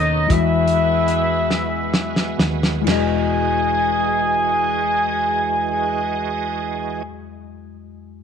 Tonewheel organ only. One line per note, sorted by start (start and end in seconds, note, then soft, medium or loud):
0.00 0.30 D#3 medium
0.00 0.27 B3 soft
0.00 0.27 C#4 soft
0.00 0.27 A4 medium
0.30 0.37 F#3 soft
0.30 2.83 B3 soft
0.30 2.84 E4 medium
0.30 2.83 F#4 medium
0.36 2.85 G#3 soft
2.86 7.03 E3 medium
2.86 7.03 G#3 medium
2.86 7.02 F#4 medium
2.86 7.02 D#5 medium